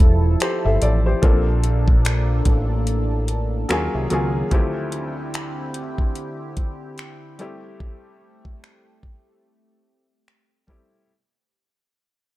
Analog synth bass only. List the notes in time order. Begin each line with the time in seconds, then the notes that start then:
Already playing: E1
0.65 G1
0.82 A1
1.23 A#1
2.46 A1
3.70 D#2
3.94 C2
4.11 C#2